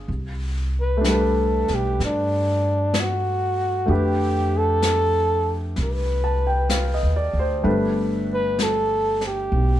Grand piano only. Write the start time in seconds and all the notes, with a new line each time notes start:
Already playing: B3 G#4
0.97 A3 D4
1.04 G3
1.09 B4
3.86 D3 A3 G4
3.91 B4
6.24 A5
6.47 G5
6.70 F5
6.94 D#5
7.16 D5
7.39 C5
7.63 G3 A3 D4 B4